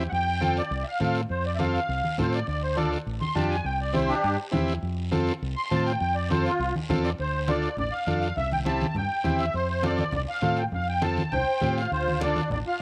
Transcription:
0.09 F2 F#5, long guiro
0.13 G5
0.41 C4 F4 A4, high conga, short guiro
0.57 D5, short guiro
0.71 C2, long guiro
0.84 E5
0.88 F5
1.00 A2 C4 F4 A4 F5, high conga, short guiro
1.15 short guiro
1.29 F2 C5, long guiro
1.46 D5
1.55 C4 E5, short guiro
1.59 F4 A4 F5, high conga
1.75 short guiro
1.89 C2, long guiro
2.04 high conga
2.18 A2 C4 F4 A4 C5, high conga, low conga, short guiro
2.33 D5, short guiro
2.47 D2 D5, long guiro
2.63 C5
2.76 D4 F4 A4 D5, high conga, short guiro
2.93 short guiro
3.06 A1, long guiro
3.21 C6, high conga
3.35 F2 D4 F4 G4 A5, high conga, short guiro
3.50 G#5, short guiro
3.64 C2 G5, long guiro
3.81 D5
3.93 C4 E4 G4 C5, high conga, short guiro
4.08 D4 G4, short guiro
4.24 G2, long guiro
4.52 E2 C4 E4 G4, high conga, low conga, short guiro
4.68 short guiro
4.83 F2, long guiro
5.12 C4 F4 A4, high conga, short guiro
5.27 short guiro
5.42 C2, long guiro
5.56 C6
5.71 A2 C4 F4 C5 A5, high conga, short guiro
5.86 G5, short guiro
6.00 F2 G5, long guiro
6.15 D5
6.30 C4 F4 A4 C5, high conga, short guiro
6.45 F4, short guiro
6.59 C2, long guiro
6.75 high conga
6.89 E2 C4 F4 A4, high conga, low conga, short guiro
7.04 D5, short guiro
7.18 D2 C5, high conga, long guiro
7.48 D4 F4 A4 D5, high conga, short guiro
7.62 short guiro
7.76 A1 D5, high conga, low conga, long guiro
7.92 F5
8.06 F2 D4 F4 A4, high conga, short guiro
8.20 F5, short guiro
8.36 C2 E5, high conga, low conga, long guiro
8.52 G5, high conga
8.65 C4 E4 G4 A5, high conga, short guiro
8.80 high conga, short guiro
8.88 A5
8.94 G2 G5, high conga, low conga, long guiro
9.24 E2 C4 E4 G4, high conga, low conga, short guiro
9.39 E5, short guiro
9.53 F2 C5, high conga, long guiro
9.69 C5
9.82 C4 F4 A4 D5, high conga, short guiro
9.97 D5, high conga, short guiro
10.11 C2, high conga, low conga, long guiro
10.15 D5
10.29 F5
10.41 A2 C4 F4 A4, high conga, short guiro
10.56 G5, short guiro
10.72 F2 F5, high conga, low conga, long guiro
10.89 G5
11.02 C4 F4 A4 A5, high conga, short guiro
11.17 high conga, short guiro
11.32 C2 C5 G5, high conga, low conga, long guiro
11.61 A2 C4 F4 G4, high conga, low conga, short guiro
11.78 F4 F5, short guiro
11.92 D2 F4 C5, high conga, long guiro
12.08 high conga
12.20 D4 F4 A4 D5, high conga, short guiro
12.36 high conga, short guiro
12.50 A1 D4 D5, high conga, low conga, long guiro
12.67 F4 F5

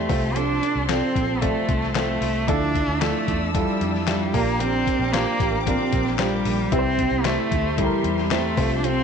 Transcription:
Already playing: C3 A3 C4 E4 G4 C5 D5 C6
0.08 C2 C3 C4 F4 A4 C5 A5, kick, open hi-hat
0.34 C3 F3 C4 D4 F4 A4, closed hi-hat
0.63 C4 F4, closed hi-hat
0.75 C2
0.88 F3 C4 F4 A4 D5, snare, clap, closed hi-hat
1.14 A#1 C4 F4 A4, kick, closed hi-hat
1.41 C3 F3 A3 C4 F4 A4 D5, kick, closed hi-hat
1.67 C2 C4 F4 A4, kick, closed hi-hat
1.83 snare
1.94 F3 A3 C4 F4 A4 C5, snare, clap, closed hi-hat
2.20 C2 C4 F4 A4, open hi-hat
2.47 D2 D3 F3 D4 E4 F4 A4 D5 E6, kick, closed hi-hat
2.73 D4 E4 A4, kick, closed hi-hat
2.88 D2
3.00 F3 A3 D4 E4 F4 A4, snare, clap, closed hi-hat
3.27 E2 D4 E4 A4, kick, closed hi-hat
3.54 D3 F3 G3 D4 E4 F4 A4, kick, closed hi-hat
3.80 F2 D4 E4 A4, closed hi-hat
3.94 snare
4.07 F3 G3 D4 E4 F4 G4 A4, snare, clap, closed hi-hat
4.33 A#1 A#2 F3 A#3 D4 F4 G4 A#4 G5 D6, kick, open hi-hat
4.59 A#2 D3 F3 A#3 C4 D4 G4, closed hi-hat
4.86 F3 A#3 D4 G4, kick, closed hi-hat
4.99 A#1
5.12 F3 A#3 D4 F4 G4 C5, snare, clap, closed hi-hat
5.39 A1 F3 A#3 D4 G4, kick, closed hi-hat
5.66 A#2 D3 F3 A#3 C4 D4 F4 G4 A#4, kick, closed hi-hat
5.92 A#1 F3 A#3 D4 G4, kick, closed hi-hat
6.06 snare
6.18 F3 G3 A#3 D4 F4 G4 C5, snare, clap, closed hi-hat
6.45 A#1 F3 A#3 D4 G4, open hi-hat
6.71 C2 C3 G3 C4 E4 G4 B4 E5 C6, kick, closed hi-hat
6.79 C5
6.98 C4 E4 G4, kick, closed hi-hat
7.11 C2
7.24 G3 A3 C4 E4 G4 C5, snare, clap, closed hi-hat
7.51 D2 C4 E4 G4, kick, closed hi-hat
7.77 C3 E3 G3 C4 E4 G4 A4, kick, closed hi-hat
7.84 A#4
8.03 E2 C4 E4 G4, closed hi-hat
8.18 snare
8.30 G3 A3 C4 E4 G4 C5, snare, clap, closed hi-hat
8.56 C2 C3 F3 C4 F4 A4 C5 F5, kick, open hi-hat
8.78 D4
8.83 C3 F3 C4 F4 A4, closed hi-hat

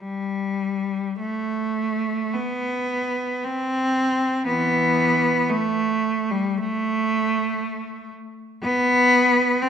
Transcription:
0.00 G3
1.20 A3
2.34 B3
3.44 C4
4.46 E3 B3
5.50 A3
6.31 G3
6.58 A3
8.63 B3
9.63 C4

